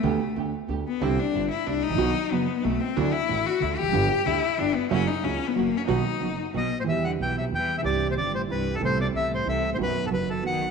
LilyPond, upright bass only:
\new Staff \with { instrumentName = "Upright bass" } { \clef bass \time 3/4 \key e \minor \tempo 4 = 185 d,16. r8 r32 d,16. r8 r32 d,16. r8 r32 | c,16. r8 r32 g,,16. r8 r32 c,16. r16 gis,,32 a,,32 ais,,32 | b,,16. r8 r32 fis,,16. r8 r32 b,,16. r8 r32 | d,16. r8 r32 a,,16. r8 r32 d,16. r16 e,,32 f,,32 fis,,32 |
g,,16. r8 r32 d,16. r8 r32 g,,16. r8 r32 | fis,,16. r8 r32 cis,16. r8 r32 fis,,16. r8 r32 | b,,16. r8 r32 fis,,16. r8 r32 b,,16. r8 r32 | e,4 b,,4 e,4 |
c,4 g,,4 c,4 | c,4 c,4 c,4 | b,,4 fis,,4 b,,4 | }